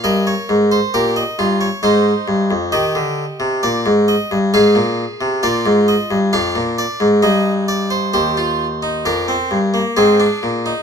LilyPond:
<<
  \new Staff \with { instrumentName = "Harpsichord" } { \time 3/4 \key ees \mixolydian \tempo 4 = 67 << { ees''16 des''8 c''16 bes'16 ees''8 des''16 c''4 | ees''4 d''8 ees''8 f''4 | d''8 ees''8 f''8 d''8 ees''8 d''16 c''16 | c''4 bes'4 aes'4 | } \\ { bes'4 g'8 f'8 ees'4 | g'2 aes'4 | f'4 d'4 ees'4 | g'16 f'8 ees'16 d'16 c'8 bes16 c'16 d'8 ees'16 | } >> }
  \new Staff \with { instrumentName = "Harpsichord" } { \clef bass \time 3/4 \key ees \mixolydian g,8 aes,8 bes,8 g,8 aes,8 g,16 f,16 | ees16 d8 c16 bes,16 aes,8 g,16 aes,16 bes,8 c16 | bes,16 aes,8 g,16 f,16 bes,8 aes,16 g,4 | ees,4 f,8 g,8 aes,8 bes,8 | }
>>